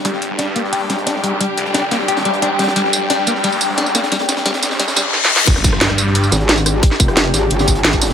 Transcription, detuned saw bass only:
\new Staff \with { instrumentName = "Detuned saw bass" } { \clef bass \time 4/4 \key c \minor \tempo 4 = 177 g,,4 g,4. aes,,4. | r8 f,,4 aes,,8 g,,4 aes,,4 | g,,4 g,4. aes,,4. | r8 f,,4 aes,,8 f,,4 r4 |
g,,4 g,4. r4. | r1 | }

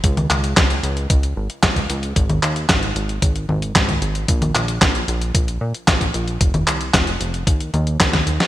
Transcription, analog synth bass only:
\new Staff \with { instrumentName = "Analog synth bass" } { \clef bass \time 4/4 \key aes \major \tempo 4 = 113 des,8 des,8 des,8 des,8 des,8 aes,,8 des,8 des,8 | aes,,8 ees,8 aes,,8 aes,,8 aes,,8 aes,,8 aes,,8 aes,,8 | bes,,8 bes,,8 bes,,8 bes,,8 bes,,8 bes,8 bes,,8 bes,,8 | f,,8 c,8 f,,8 f,,8 ees,8 ees,8 ees,8 ees,8 | }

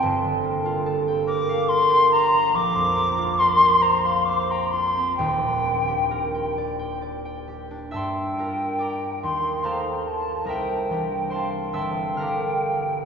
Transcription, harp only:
\new Staff \with { instrumentName = "Harp" } { \time 6/8 \key g \minor \tempo 4. = 47 << { r2. | r2. | r2. | <e'' a'' c''' e'''>4 <d'' g'' bes'' d'''>4 <c'' f'' a'' c'''>4 |
<bes' e'' g'' bes''>4 <c'' f'' a'' c'''>8 <e'' a'' c''' e'''>8 <f'' bes'' d''' f'''>4 | } \\ { <g,, g, f' a' f'' g''>16 d16 bes16 f'16 a'16 g''16 bes'16 f''16 bes'16 g''16 f'16 bes16 | bes,,16 f,16 c'16 f'16 bes'16 g''16 c''16 f''16 c''16 g''16 f'16 c'16 | <ees,, ees,>16 bes,16 d'16 g'16 bes'16 g''16 d''16 g''16 d''16 g''16 g'16 d'16 | g,8 <d' f' g' bes'>4 ees,8 <a ees' g' a'>4 |
c,8 <e d' g'>4 g,,8 <d d' g' bes'>4 | } >> }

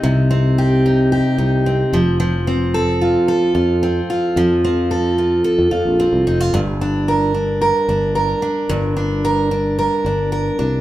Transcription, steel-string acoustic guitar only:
\new Staff \with { instrumentName = "Steel-string acoustic guitar" } { \time 4/4 \key g \minor \tempo 4 = 111 <c c' ees' g'>8 c'8 g'8 ees'8 g'8 ees'8 c'8 f8 | f8 c'8 a'8 f'8 a'8 f'8 c'8 f'8 | f8 c'8 a'8 f'8 a'8 f'8 c'8 ees'16 f'16 | g,8 d'8 bes'8 d'8 bes'8 d'8 bes'8 d'8 |
g,8 d'8 bes'8 d'8 bes'8 d'8 bes'8 d'8 | }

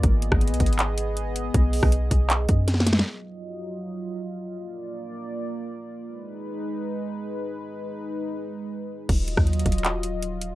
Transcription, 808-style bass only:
\new Staff \with { instrumentName = "808-style bass" } { \clef bass \time 4/4 \key ees \minor \tempo 4 = 159 aes,,8. aes,,8 ces,16 aes,,2~ aes,,8 | b,,8. b,,8. b,,4 fis,4. | r1 | r1 |
r1 | r1 | ees,,8. ees,8. ees,,2~ ees,,8 | }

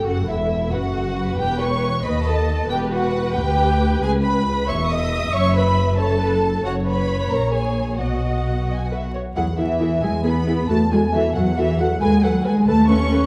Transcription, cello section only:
\new Staff \with { instrumentName = "Cello section" } { \clef bass \time 6/8 \key e \dorian \tempo 4. = 91 fis,8 e,4 fis,4. | e,4. dis,4. | e,4. d,4. | \key e \major cis,4. e,4. |
fis,2. | fis,4. ais,4. | b,2~ b,8 r8 | fis8 e4 gis8 b4 |
a8 gis8 e8 fis8 e8 fis8 | gis8 fis8 gis8 a8 cis'4 | }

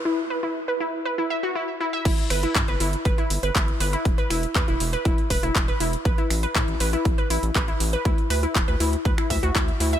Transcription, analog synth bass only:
\new Staff \with { instrumentName = "Analog synth bass" } { \clef bass \time 4/4 \key g \major \tempo 4 = 120 r1 | g,,16 r16 g,,16 r16 g,16 g,,16 g,,16 r16 g,,16 r16 g,,16 g,,16 g,,16 r16 g,,16 r16 | e,,16 r16 e,,16 r16 e,16 e,,16 e,,16 r16 e,,16 r16 e,,16 e,,16 e,,16 r16 e,,16 r16 | a,,16 r16 a,,16 r16 a,16 a,,16 a,,16 r16 a,,16 r16 a,,16 a,,16 a,,16 r16 a,,16 r16 |
d,16 r16 d,16 r16 d,,16 d,16 d,16 r16 d,16 r16 d,16 d,16 d,16 r16 d,16 r16 | }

